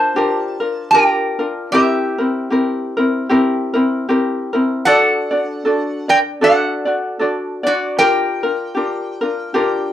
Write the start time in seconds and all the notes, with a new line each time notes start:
Already playing: D4 F4 A#4 C5 A5
0.16 D4 F4 G4 A#4
0.60 D4 F4 A#4
0.91 D4 F4 G4 A#4 G5
0.95 A#4
1.39 D4 F4 A#4
1.72 C4 E4 G4 A#4 E5
2.18 C4 E4 A#4
2.50 C4 E4 G4 A#4
2.97 C4 E4 A#4
3.29 C4 E4 G4 A#4
3.74 C4 E4 A#4
4.09 C4 E4 G4 A#4
4.53 C4 E4 A#4
4.85 D4 F#4 A4 D5 F#5
5.31 D4 F#4 D5
5.65 D4 F#4 A4 D5
6.08 D4 A#4 D5 G5
6.41 D4 F#4 A4 D5 F#5
6.85 D4 F#4 D5
7.19 D4 F#4 A4 D5
7.63 D4 F#4 D5
7.68 F#4
7.98 D4 F4 G4 A#4 G5
8.43 D4 F4 A#4
8.75 D4 F4 G4 A#4
9.21 D4 F4 A#4
9.54 D4 F4 G4 A#4